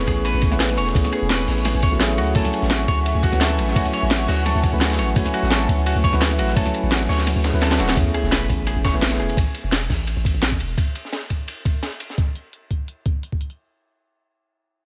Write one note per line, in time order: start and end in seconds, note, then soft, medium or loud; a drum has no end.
0.00 0.51 A3 medium
0.00 0.51 B3 medium
0.00 0.52 C#4 medium
0.00 0.52 E4 medium
0.00 0.96 G#4 medium
0.00 0.53 B4 medium
0.00 2.14 B4 medium
0.00 2.14 G#5 medium
0.00 2.14 C#6 medium
0.07 0.33 A1 medium
0.07 0.24 G#4 loud
0.07 kick medium
0.07 open hi-hat medium
0.07 ride medium
0.25 0.41 B4 loud
0.25 closed hi-hat medium
0.25 ride medium
0.34 0.50 A1 loud
0.42 kick loud
0.42 closed hi-hat medium
0.42 ride medium
0.51 0.79 A1 loud
0.51 0.93 A3 medium
0.51 0.93 B3 medium
0.51 0.93 C#4 medium
0.51 0.93 E4 medium
0.51 0.94 B4 medium
0.51 snare soft
0.60 0.70 G#4 medium
0.60 snare loud
0.60 closed hi-hat medium
0.60 ride medium
0.69 snare soft
0.69 ride soft
0.77 0.93 E1 medium
0.77 0.87 C#5 loud
0.77 open hi-hat medium
0.77 ride medium
0.87 snare soft
0.87 closed hi-hat soft
0.94 1.03 A1 loud
0.94 1.90 A3 medium
0.94 1.90 B3 medium
0.94 1.90 C#4 medium
0.94 1.90 E4 medium
0.94 1.91 G#4 medium
0.94 kick loud
0.94 closed hi-hat medium
0.94 ride medium
1.04 snare soft
1.04 closed hi-hat soft
1.12 1.29 G#4 loud
1.12 closed hi-hat medium
1.12 ride medium
1.22 1.47 E1 medium
1.30 1.46 B4 loud
1.30 snare loud
1.30 closed hi-hat medium
1.30 ride medium
1.48 1.73 A1 medium
1.48 snare medium
1.48 open hi-hat medium
1.57 closed hi-hat soft
1.65 1.75 G#4 medium
1.65 snare soft
1.65 closed hi-hat medium
1.65 ride loud
1.75 1.90 A1 loud
1.82 1.93 C#5 loud
1.82 kick loud
1.82 closed hi-hat medium
1.82 ride medium
1.92 2.19 A1 loud
1.92 1.98 A3 medium
1.92 1.98 B3 medium
1.92 1.98 C#4 medium
1.92 1.99 E4 medium
1.92 1.99 F#4 medium
2.00 2.33 F#3 medium
2.00 2.33 A3 medium
2.00 2.34 C#4 medium
2.00 2.34 E4 medium
2.00 2.34 G#4 loud
2.00 snare loud
2.00 closed hi-hat medium
2.00 ride medium
2.18 2.34 D2 medium
2.18 2.35 F#4 loud
2.18 7.93 E5 medium
2.18 7.93 F#5 medium
2.18 7.93 G#5 medium
2.18 7.93 C#6 loud
2.18 open hi-hat medium
2.18 ride medium
2.27 closed hi-hat soft
2.35 2.44 D2 loud
2.35 3.30 F#3 medium
2.35 3.30 A3 medium
2.35 3.31 C#4 medium
2.35 3.31 E4 medium
2.35 2.51 A4 loud
2.35 3.31 G#5 medium
2.35 kick loud
2.35 closed hi-hat medium
2.35 ride loud
2.45 snare soft
2.45 closed hi-hat soft
2.53 closed hi-hat medium
2.53 ride medium
2.62 2.87 A1 medium
2.62 snare soft
2.71 2.80 F#4 medium
2.71 snare loud
2.71 closed hi-hat medium
2.71 ride medium
2.88 3.13 D2 medium
2.88 2.98 C#5 loud
2.88 kick medium
2.88 open hi-hat medium
2.88 ride medium
3.06 closed hi-hat medium
3.06 ride medium
3.15 3.31 D2 loud
3.23 3.40 F#4 loud
3.23 kick loud
3.23 closed hi-hat medium
3.23 ride medium
3.31 3.60 D2 loud
3.31 3.73 F#3 medium
3.31 3.74 A3 medium
3.31 3.74 C#4 medium
3.31 3.74 E4 medium
3.31 3.74 B4 medium
3.31 snare soft
3.41 3.57 A4 loud
3.41 snare loud
3.41 closed hi-hat medium
3.41 ride medium
3.50 snare soft
3.50 ride soft
3.58 3.74 A1 medium
3.58 open hi-hat medium
3.58 ride medium
3.67 snare medium
3.67 closed hi-hat soft
3.75 3.84 D2 loud
3.75 4.70 F#3 medium
3.75 4.71 A3 medium
3.75 4.71 C#4 medium
3.75 4.71 E4 medium
3.75 3.86 F#4 medium
3.75 4.71 G#5 medium
3.75 kick loud
3.75 closed hi-hat medium
3.75 ride loud
3.85 snare soft
3.85 closed hi-hat soft
3.93 4.03 C#5 loud
3.93 closed hi-hat medium
3.93 ride medium
4.03 4.27 A1 medium
4.10 snare loud
4.10 closed hi-hat medium
4.10 ride medium
4.28 4.54 D2 medium
4.28 4.45 F#4 loud
4.28 snare medium
4.28 open hi-hat medium
4.46 4.62 A4 loud
4.46 snare soft
4.46 closed hi-hat medium
4.46 ride medium
4.55 4.71 D2 loud
4.63 kick loud
4.63 closed hi-hat medium
4.63 ride medium
4.72 5.00 D2 loud
4.72 5.14 F#3 medium
4.72 5.14 A3 medium
4.72 5.14 C#4 medium
4.72 5.14 E4 medium
4.72 5.15 B4 medium
4.81 4.91 F#4 medium
4.81 snare loud
4.81 closed hi-hat medium
4.81 ride medium
4.90 snare medium
4.90 ride medium
4.94 snare medium
4.94 ride medium
4.99 5.15 A1 medium
4.99 5.09 C#5 loud
4.99 open hi-hat medium
4.99 ride medium
5.08 closed hi-hat soft
5.15 5.24 D2 loud
5.15 6.11 F#3 medium
5.15 6.11 A3 medium
5.15 6.11 C#4 medium
5.15 6.11 E4 medium
5.15 6.12 G#5 medium
5.15 kick loud
5.15 closed hi-hat medium
5.15 ride medium
5.25 snare soft
5.25 closed hi-hat soft
5.34 5.50 F#4 loud
5.34 closed hi-hat medium
5.34 ride medium
5.43 5.67 A1 medium
5.43 snare soft
5.50 5.67 A4 loud
5.50 snare loud
5.50 closed hi-hat loud
5.50 ride medium
5.69 5.94 D2 medium
5.69 kick medium
5.69 open hi-hat medium
5.69 ride medium
5.86 5.96 F#4 medium
5.86 closed hi-hat medium
5.86 ride medium
5.96 6.11 D2 medium
6.04 6.14 C#5 loud
6.04 kick loud
6.04 closed hi-hat medium
6.04 ride medium
6.12 6.40 D2 loud
6.12 6.54 F#3 medium
6.12 6.54 A3 medium
6.12 6.55 C#4 medium
6.12 6.55 E4 medium
6.12 6.55 B4 medium
6.12 snare soft
6.21 snare loud
6.21 closed hi-hat medium
6.21 ride medium
6.31 snare soft
6.31 ride soft
6.39 6.55 A1 medium
6.39 6.56 F#4 loud
6.39 open hi-hat medium
6.39 ride medium
6.48 snare soft
6.48 closed hi-hat soft
6.55 6.65 D2 loud
6.55 7.51 F#3 medium
6.55 7.51 A3 medium
6.55 7.52 C#4 medium
6.55 7.52 E4 medium
6.55 6.72 A4 loud
6.55 7.52 G#5 medium
6.55 kick loud
6.55 closed hi-hat loud
6.55 ride medium
6.66 snare soft
6.66 closed hi-hat soft
6.74 closed hi-hat medium
6.74 ride medium
6.83 7.08 A1 medium
6.92 7.01 F#4 medium
6.92 snare loud
6.92 closed hi-hat loud
6.92 ride medium
7.09 7.34 D2 medium
7.09 7.19 C#5 loud
7.09 snare medium
7.09 open hi-hat medium
7.18 snare soft
7.27 snare soft
7.27 closed hi-hat loud
7.27 ride medium
7.36 7.52 D2 medium
7.44 snare loud
7.44 closed hi-hat medium
7.44 ride medium
7.52 7.81 D2 medium
7.52 7.94 F#3 medium
7.52 7.95 A3 medium
7.52 7.95 C#4 medium
7.52 7.95 E4 medium
7.52 7.95 B4 medium
7.61 7.78 A4 medium
7.61 snare loud
7.61 snare medium
7.61 closed hi-hat medium
7.61 ride medium
7.71 snare medium
7.71 snare loud
7.71 ride medium
7.79 7.95 D1 medium
7.79 7.95 F#4 medium
7.79 snare loud
7.79 open hi-hat medium
7.79 ride medium
7.89 snare medium
7.89 snare loud
7.89 closed hi-hat soft
7.89 ride medium
7.96 8.05 A1 medium
7.96 8.91 A3 medium
7.96 8.92 B3 medium
7.96 8.92 C#4 medium
7.96 8.92 E4 medium
7.96 8.93 G#4 medium
7.96 kick loud
7.96 closed hi-hat medium
7.96 ride medium
7.96 sub drop medium
8.14 8.31 G#4 loud
8.14 closed hi-hat medium
8.14 ride medium
8.24 8.48 E1 medium
8.24 snare soft
8.32 8.48 B4 loud
8.32 snare loud
8.32 closed hi-hat medium
8.32 ride medium
8.49 8.75 A1 medium
8.49 kick medium
8.49 closed hi-hat medium
8.49 ride medium
8.67 8.77 G#4 medium
8.67 closed hi-hat medium
8.67 ride medium
8.76 8.92 A1 medium
8.84 8.94 C#5 medium
8.84 kick loud
8.84 snare loud
8.84 closed hi-hat medium
8.84 ride medium
8.93 9.21 A1 medium
8.93 9.35 A3 medium
8.93 9.35 B3 medium
8.93 9.35 C#4 medium
8.93 9.35 E4 medium
8.93 9.36 B4 medium
9.02 snare loud
9.02 closed hi-hat medium
9.02 ride medium
9.10 snare loud
9.10 ride medium
9.20 9.36 E1 medium
9.20 9.36 G#4 loud
9.20 closed hi-hat medium
9.29 closed hi-hat soft
9.29 ride medium
9.37 9.45 A1 medium
9.37 kick loud
9.37 closed hi-hat medium
9.37 ride medium
9.54 closed hi-hat medium
9.54 ride medium
9.64 9.89 E1 medium
9.72 snare loud
9.72 closed hi-hat medium
9.72 ride medium
9.90 10.15 A1 medium
9.90 kick medium
9.90 snare soft
9.90 closed hi-hat medium
9.90 open hi-hat medium
10.07 closed hi-hat medium
10.07 ride medium
10.17 10.32 A1 medium
10.25 kick loud
10.25 closed hi-hat medium
10.25 ride medium
10.34 10.62 A1 medium
10.42 snare loud
10.42 closed hi-hat medium
10.42 ride medium
10.52 kick medium
10.60 10.76 E1 medium
10.60 closed hi-hat medium
10.60 ride medium
10.69 closed hi-hat soft
10.78 kick loud
10.78 closed hi-hat medium
10.78 ride medium
10.95 closed hi-hat medium
10.95 ride medium
11.05 snare soft
11.13 snare loud
11.13 closed hi-hat medium
11.13 ride medium
11.30 kick medium
11.30 closed hi-hat medium
11.30 ride medium
11.48 closed hi-hat medium
11.48 ride medium
11.65 kick loud
11.65 closed hi-hat medium
11.65 ride medium
11.83 snare loud
11.83 closed hi-hat medium
11.83 ride medium
11.92 ride soft
12.00 closed hi-hat medium
12.00 ride medium
12.10 snare soft
12.10 closed hi-hat soft
12.18 kick loud
12.18 closed hi-hat medium
12.36 closed hi-hat medium
12.53 closed hi-hat medium
12.71 kick medium
12.71 closed hi-hat medium
12.88 closed hi-hat medium
13.06 kick loud
13.06 closed hi-hat medium
13.23 closed hi-hat medium
13.32 kick medium
13.41 closed hi-hat medium
13.50 closed hi-hat soft